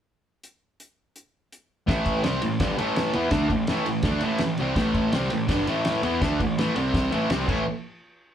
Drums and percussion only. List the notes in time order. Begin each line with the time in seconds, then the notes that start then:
0.43 closed hi-hat
0.80 closed hi-hat
1.16 closed hi-hat
1.52 closed hi-hat
1.88 kick, snare, ride
2.06 kick, ride
2.24 snare, ride
2.42 ride
2.60 kick, snare, ride
2.79 ride
2.96 snare, ride
3.13 ride
3.31 kick, snare, ride
3.50 kick, ride
3.67 snare, ride
3.86 ride
4.03 kick, snare, ride
4.21 ride
4.38 snare, ride
4.57 ride
4.76 kick, snare, ride
4.94 kick, ride
5.12 snare, ride
5.30 ride
5.49 kick, snare, ride
5.67 ride
5.85 snare, ride
6.03 ride
6.22 kick, snare, ride
6.40 kick, ride
6.58 snare, ride
6.76 ride
6.94 kick, snare, ride
7.12 ride
7.30 snare, ride
7.48 kick, crash